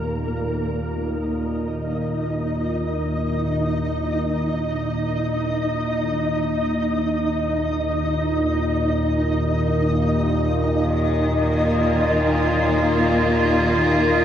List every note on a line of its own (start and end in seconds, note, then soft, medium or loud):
0.00 0.79 D#2 medium
0.00 0.80 A#2 medium
0.00 0.82 A#3 medium
0.00 0.82 A#4 medium
0.77 14.25 D#2 medium
0.77 14.25 A#2 medium
0.77 14.25 D#4 medium
0.77 14.25 D#5 medium
10.82 14.25 D#3 medium
11.36 14.25 A#3 medium
11.64 14.25 F4 medium